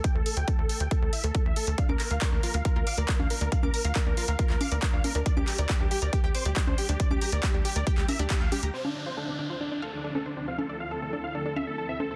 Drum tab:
CC |----------------|----------------|----------------|----------------|
HH |x-oxx-oxx-oxx-ox|x-oxx-oxx-oxx-ox|x-oxx-oxx-oxx-ox|x-oxx-oxx-oxx-ox|
CP |----------------|--x-x-------x---|----x----x--x---|--x-x-------x---|
CG |----------------|-o-----------o--|-o--------o---o-|-o-----------o--|
BD |o---o---o---o---|o---o---o---o---|o---o---o---o---|o---o---o---o---|

CC |----------------|x---------------|----------------|
HH |x-oxx-oxx-oxx-ox|----------------|----------------|
CP |----x----x--x---|----------------|----------------|
CG |-o--------o---o-|-o-----------o--|-o--------o---o-|
BD |o---o---o---o---|----------------|----------------|